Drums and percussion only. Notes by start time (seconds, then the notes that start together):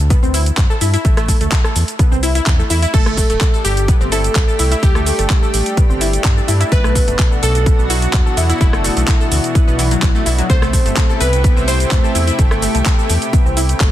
0.10 kick, closed hi-hat, shaker
0.23 shaker
0.34 open hi-hat, shaker
0.46 closed hi-hat, shaker
0.57 kick, clap, closed hi-hat, shaker
0.71 shaker
0.81 open hi-hat, shaker
0.94 closed hi-hat, shaker
1.05 kick, closed hi-hat, shaker
1.17 cross-stick, closed hi-hat, shaker
1.28 kick, open hi-hat, shaker
1.41 closed hi-hat, shaker
1.52 kick, clap, closed hi-hat, shaker
1.64 cross-stick, shaker
1.76 open hi-hat, shaker
1.88 closed hi-hat, shaker
1.99 kick, closed hi-hat, shaker
2.12 shaker
2.23 open hi-hat, shaker
2.35 closed hi-hat, shaker
2.46 kick, clap, closed hi-hat, shaker
2.59 shaker
2.70 open hi-hat, shaker
2.83 closed hi-hat, shaker
2.94 kick, closed hi-hat, crash, shaker
3.06 cross-stick, shaker
3.17 kick, open hi-hat, shaker
3.30 closed hi-hat, shaker
3.41 kick, clap, closed hi-hat, shaker
3.54 shaker
3.65 open hi-hat, shaker
3.77 closed hi-hat, shaker
3.88 kick, closed hi-hat, shaker
4.01 shaker
4.12 open hi-hat, shaker
4.24 closed hi-hat, shaker
4.35 kick, clap, closed hi-hat, shaker
4.48 shaker
4.59 open hi-hat, shaker
4.72 closed hi-hat, shaker
4.83 kick, closed hi-hat, shaker
4.95 cross-stick, shaker
5.06 open hi-hat, shaker
5.19 closed hi-hat, shaker
5.30 kick, clap, closed hi-hat, shaker
5.43 shaker
5.54 open hi-hat, shaker
5.66 closed hi-hat, shaker
5.77 kick, closed hi-hat, shaker
5.90 shaker
6.01 open hi-hat, shaker
6.13 closed hi-hat, shaker
6.24 kick, clap, closed hi-hat, shaker
6.38 shaker
6.48 open hi-hat, shaker
6.61 closed hi-hat, shaker
6.72 kick, closed hi-hat, shaker
6.84 cross-stick, shaker
6.95 kick, open hi-hat, shaker
7.08 closed hi-hat, shaker
7.19 kick, clap, closed hi-hat, shaker
7.32 shaker
7.43 open hi-hat, shaker
7.55 closed hi-hat, shaker
7.66 kick, closed hi-hat, shaker
7.79 shaker
7.90 open hi-hat, shaker
8.02 closed hi-hat, shaker
8.13 kick, clap, closed hi-hat, shaker
8.27 shaker
8.37 open hi-hat, shaker
8.50 closed hi-hat, shaker
8.61 kick, closed hi-hat, shaker
8.73 cross-stick, shaker
8.84 open hi-hat, shaker
8.97 closed hi-hat, shaker
9.08 kick, clap, closed hi-hat, shaker
9.21 shaker
9.32 open hi-hat, shaker
9.44 closed hi-hat, shaker
9.55 kick, closed hi-hat, shaker
9.68 shaker
9.79 open hi-hat, shaker
9.91 closed hi-hat, shaker
10.02 kick, clap, closed hi-hat, shaker
10.15 shaker
10.26 open hi-hat, shaker
10.38 closed hi-hat, shaker
10.50 kick, closed hi-hat, shaker
10.62 cross-stick, shaker
10.73 kick, open hi-hat, shaker
10.86 closed hi-hat, shaker
10.97 kick, clap, closed hi-hat, shaker
11.10 shaker
11.21 open hi-hat, shaker
11.33 closed hi-hat, shaker
11.44 kick, closed hi-hat, shaker
11.57 shaker
11.68 open hi-hat, shaker
11.80 closed hi-hat, shaker
11.91 kick, clap, closed hi-hat, shaker
12.04 shaker
12.15 open hi-hat, shaker
12.27 closed hi-hat, shaker
12.39 kick, closed hi-hat, shaker
12.51 cross-stick, shaker
12.62 open hi-hat, shaker
12.75 closed hi-hat, shaker
12.86 kick, clap, closed hi-hat, shaker
12.99 shaker
13.10 open hi-hat, shaker
13.22 closed hi-hat, shaker
13.33 kick, closed hi-hat, shaker
13.46 shaker
13.57 open hi-hat, shaker
13.69 closed hi-hat, shaker
13.80 kick, clap, closed hi-hat, shaker